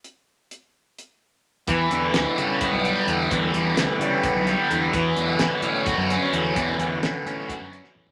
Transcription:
<<
  \new Staff \with { instrumentName = "Transistor combo organ" } { \time 7/8 \key e \dorian \tempo 4 = 129 << { r2. r8 | <b b'>2.~ <b b'>8~ | <b b'>2.~ <b b'>8~ | <b b'>2.~ <b b'>8~ |
<b b'>2.~ <b b'>8 | } \\ { r2. r8 | <e' g' d''>2.~ <e' g' d''>8~ | <e' g' d''>2.~ <e' g' d''>8 | <cis' fis'>2.~ <cis' fis'>8~ |
<cis' fis'>2.~ <cis' fis'>8 | } >> }
  \new Staff \with { instrumentName = "Distorted electric guitar" } { \clef bass \time 7/8 \key e \dorian r2. r8 | e8 d8 d8 g8 b8 g8 d8 | e8 d8 d8 g8 b8 g8 d8 | e8 d8 d8 cis'8 fis'8 cis'8 d8 |
e8 d8 d8 cis'8 fis'8 cis'8 d8 | }
  \new Staff \with { instrumentName = "Picked electric bass" } { \clef bass \time 7/8 \key e \dorian r2. r8 | e,8 e,8 d,16 r16 cis8. b,,8 r16 e,8 | e,8 e,8 d,16 r16 cis8. b,,8 r16 e,8 | e,8 e,8 a,,16 r16 a,8. fis,8 r16 e,8 |
e,8 e,8 a,,16 r16 a,8. fis,8 r16 e,8 | }
  \new DrumStaff \with { instrumentName = "Drums" } \drummode { \time 7/8 hh4 hh4 hh4. | <hh bd>8 hh8 <hh sn>8 hh8 <hh bd>8 hh8 hh8 | <hh bd>8 hh8 <hh sn>8 hh8 <hh bd>8 <hh sn>8 hh8 | <hh bd>8 hh8 <hh sn>8 hh8 <hh bd>8 <hh sn>8 hh8 |
<hh bd>8 hh8 <hh sn>8 hh8 <hh bd>8 <hh sn>16 sn16 toml16 tomfh16 | }
>>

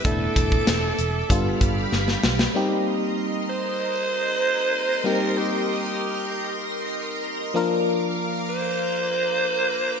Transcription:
<<
  \new Staff \with { instrumentName = "String machine" } { \time 4/4 \key g \mixolydian \tempo 4 = 96 << { <e'' d'''>2 <f'' b''>2 | \key c \minor <ees'' c'''>1~ | <ees'' c'''>1 | <f'' d'''>1 | } \\ { a'2 g'2 | bes'1~ | bes'1~ | bes'1 | } >> }
  \new Staff \with { instrumentName = "Alto saxophone" } { \time 4/4 \key g \mixolydian a'2. r4 | \key c \minor r4. c''2~ c''8 | bes'8 g'8 g'4. r4. | r4. c''2~ c''8 | }
  \new Staff \with { instrumentName = "FM electric piano" } { \time 4/4 \key g \mixolydian <a b d' e'>2 <g b d' f'>2 | \key c \minor <g bes c' ees' g'>1 | <g bes c' ees' g'>1 | <f bes d' f' bes'>1 | }
  \new Staff \with { instrumentName = "Picked electric bass" } { \clef bass \time 4/4 \key g \mixolydian e,,8 e,,8 e,,8 e,,8 g,,8 g,,8 g,,8 b,,8 | \key c \minor r1 | r1 | r1 | }
  \new DrumStaff \with { instrumentName = "Drums" } \drummode { \time 4/4 <hh bd>8 <hh bd>16 bd16 <hh sn>8 hh8 <hh bd>8 <hh bd>8 sn16 sn16 sn16 sn16 | r4 r4 r4 r4 | r4 r4 r4 r4 | r4 r4 r4 r4 | }
>>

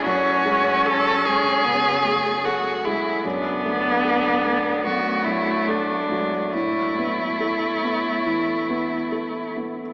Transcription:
<<
  \new Staff \with { instrumentName = "Violin" } { \time 4/4 \key a \major \tempo 4 = 74 fis'4 a'8 gis'4. fis'8 e'8 | d'2 fis'8 e'8 d'4 | e'2.~ e'8 r8 | }
  \new Staff \with { instrumentName = "Cello" } { \time 4/4 \key a \major cis'2 b8 a8 r4 | b2 a4. gis8 | a2.~ a8 r8 | }
  \new Staff \with { instrumentName = "Felt piano" } { \time 4/4 \key a \major fis,8 gis8 a'8 gis8 cis8 gis'8 a'8 gis8 | fis,8 a8 a'8 a8 fis,8 fis8 a'8 fis8 | a,8 b8 a'8 b8 e8 b8 a'8 b8 | }
>>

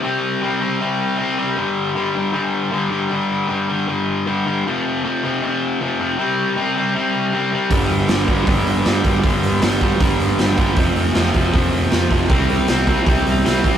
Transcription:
<<
  \new Staff \with { instrumentName = "Distorted electric guitar" } { \clef bass \time 4/4 \key g \major \tempo 4 = 156 r1 | r1 | r1 | r1 |
r1 | <g, d g b d' g'>4 <g, d g b d' g'>8 <g, d g b d' g'>8 <g, d g b d' g'>4 <g, d g b d' g'>8 <g, d g b d' g'>8 | <g, d g b d' g'>4 <g, d g b d' g'>8 <g, d g b d' g'>8 <g, d g b d' g'>4 <g, d g b d' g'>8 <g, d g b d' g'>8 | <f, c f a c' f'>4 <f, c f a c' f'>8 <f, c f a c' f'>8 <f, c f a c' f'>4 <f, c f a c' f'>8 <f, c f a c' f'>8 |
<c g c' e'>4 <c g c' e'>8 <c g c' e'>8 <c g c' e'>4 <c g c' e'>8 <c g c' e'>8 | }
  \new Staff \with { instrumentName = "Distorted electric guitar" } { \clef bass \time 4/4 \key g \major <c g c'>4 <c g c'>8 <c g c'>8 <c g c'>4 <c g c'>8 <c g c'>8 | <g, d g>4 <g, d g>8 <g, d g>8 <g, d g>4 <g, d g>8 <g, d g>8 | <g, d g>4 <g, d g>8 <g, d g>8 <g, d g>4 <g, d g>8 <g, d g>8 | <f, c f>4 <f, c f>8 <f, c f>8 <f, c f>4 <f, c f>8 <f, c f>8 |
<c g c'>4 <c g c'>8 <c g c'>8 <c g c'>4 <c g c'>8 <c g c'>8 | <g, d g>4 <g, d g>8 <g, d g>8 <g, d g>4 <g, d g>8 <g, d g>8 | <g, d g>4 <g, d g>8 <g, d g>8 <g, d g>4 <g, d g>8 <g, d g>8 | <f, c f>4 <f, c f>8 <f, c f>8 <f, c f>4 <f, c f>8 <f, c f>8 |
<c g c'>4 <c g c'>8 <c g c'>8 <c g c'>4 <c g c'>8 <c g c'>8 | }
  \new Staff \with { instrumentName = "Picked electric bass" } { \clef bass \time 4/4 \key g \major r1 | r1 | r1 | r1 |
r1 | g,,8 g,,8 g,,8 g,,8 g,,8 g,,8 g,8 g,,8 | g,,8 g,,8 g,,4 g,,8 g,,8 g,,8 g,8 | f,,8 f,,8 f,,8 f,,8 f,,8 f,,8 f,8 f,,8 |
c,8 c,8 c,4 c,8 c,8 c,8 a,,8 | }
  \new DrumStaff \with { instrumentName = "Drums" } \drummode { \time 4/4 r4 r4 r4 r4 | r4 r4 r4 r4 | r4 r4 r4 r4 | r4 r4 r4 r4 |
r4 r4 r4 r4 | <hho bd>8 hho8 <hho sn>8 <hho bd>8 <hho bd>8 hho8 <hho sn>8 <hho bd>8 | <hho bd>8 hho8 <hho sn>8 <hho bd>8 <hho bd>8 hho8 <hho sn>8 <hho bd>8 | <hho bd>8 hho8 <hho sn>8 <hho bd>8 <hho bd>8 hho8 <hho sn>8 <hho bd>8 |
<hho bd>8 hho8 <hho sn>8 <hho bd>8 <hho bd>8 hho8 <hho sn>8 <hho bd>8 | }
>>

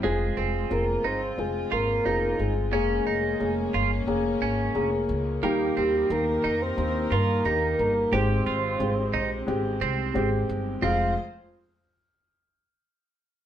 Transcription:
<<
  \new Staff \with { instrumentName = "Soft synth lead" } { \time 4/4 \key f \minor \tempo 4 = 89 aes'8 aes'8 bes'8 c''8 aes'8 bes'4 aes'8 | aes'2. r4 | g'8 g'8 bes'8. c''16 c''8 bes'4 bes'8 | c''2. r4 |
f''8 r2. r8 | }
  \new Staff \with { instrumentName = "Clean electric guitar" } { \time 4/4 \key f \minor aes8 c'8. r16 ees'16 r8. f'8 ees'8. r16 | des'8 ees'8. r16 f'16 r8. des'8. r8. | bes8 c'8. r16 ees'16 r8. f'8 ees'8. r16 | g'8 f'8. r16 ees'16 r8. c'8. r8. |
c'8 r2. r8 | }
  \new Staff \with { instrumentName = "String section" } { \time 4/4 \key f \minor << { <c' f'>1 | <bes des'>1 | <ees g' bes'>1 | c'1 |
<f f' aes' c''>8 r2. r8 | } \\ { aes1~ | aes1 | ees'1 | aes1 |
r1 | } >> }
  \new Staff \with { instrumentName = "Upright piano" } { \time 4/4 \key f \minor <c' f' aes'>4 <c' f' aes'>4 <c' f' aes'>4 <c' f' aes'>4 | <bes des' aes'>4 <bes des' aes'>4 <bes des' aes'>4 <bes des' aes'>4 | <bes ees' g'>4 <bes ees' g'>4 <bes ees' g'>4 <bes ees' g'>4 | <aes c' g'>4 <aes c' g'>4 <aes c' g'>4 <aes c' g'>4 |
<aes c' f'>8 r2. r8 | }
  \new Staff \with { instrumentName = "Upright piano" } { \clef bass \time 4/4 \key f \minor r1 | r1 | ees4. r2 r8 | aes,4. r2 r8 |
f,8 r2. r8 | }
  \new Staff \with { instrumentName = "Upright bass" } { \clef bass \time 4/4 \key f \minor f,,8 f,,8 f,,8 g,,8 f,,8 aes,,8 f,,8 g,,8 | f,,8 f,,8 f,,8 g,,8 f,,8 aes,,8 f,,8 des,8 | ees,8 ees,8 ees,8 f,8 ees,8 g,8 ees,8 g,,8 | aes,,8 aes,,8 aes,,8 bes,,8 aes,,8 c,8 aes,,8 g,,8 |
f,,8 r2. r8 | }
>>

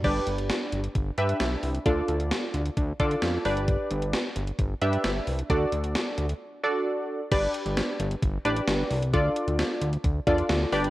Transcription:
<<
  \new Staff \with { instrumentName = "Analog polysynth" } { \time 4/4 \key g \major \tempo 4 = 132 <d' g' b' d''>4. r4 <d' g' b' e''>4~ <d' g' b' e''>16 r16 | <d' f' a' d''>4. r4 <d' f' a' d''>4 <d' g' b' d''>8~ | <d' g' b' d''>4 r4. <d' g' b' e''>4~ <d' g' b' e''>16 r16 | <d' fis' a' d''>4. r4 <d' fis' a' d''>4~ <d' fis' a' d''>16 r16 |
<d' g' b' d''>4. r4 <d' g' b' d''>4~ <d' g' b' d''>16 r16 | <d' f' a' d''>4. r4 <d' f' a' d''>4 <d' g' b' d''>8 | }
  \new Staff \with { instrumentName = "Analog synth bass" } { \clef bass \time 4/4 \key g \major g,,8 g,,8. r16 g,,8 g,,8 g,8 b,,8 c,8 | d,8 d,8. r16 d,8 d,8 d8 f,8 g,,8~ | g,,8 g,,8. r16 g,,8 g,,8 g,8 g,,8 c,8 | d,8 d,8. r16 d,8 r2 |
g,,8 r16 g,,8 r16 g,,8 g,,8 a,,8 g,,8 c,8 | d,8 r16 d,8 r16 d,8 d,8 e,8 d,8 g,,8 | }
  \new DrumStaff \with { instrumentName = "Drums" } \drummode { \time 4/4 <cymc bd>8 hh16 hh16 <hh sn>8 hh16 hh16 <hh bd>8 hh16 hh16 <hh sn>8 hho16 hh16 | <hh bd>8 hh16 hh16 <hh sn>8 hh16 hh16 <hh bd>8 <hh bd>16 hh16 <hh sn>8 hho16 hh16 | <hh bd>8 hh16 hh16 <hh sn>8 hh16 hh16 <hh bd>8 hh16 hh16 <hh sn>8 hho16 hh16 | <hh bd>8 hh16 hh16 <hh sn>8 hh16 hh16 r4 r4 |
<cymc hh bd>8 hh16 hh16 <hh sn>8 hh16 hh16 <hh bd>8 hh16 hh16 <hh sn>8 hho16 hh16 | <hh bd>8 hh16 hh16 <hh sn>8 hh16 hh16 <hh bd>8 <hh bd>16 hh16 <hh sn>8 hho16 hh16 | }
>>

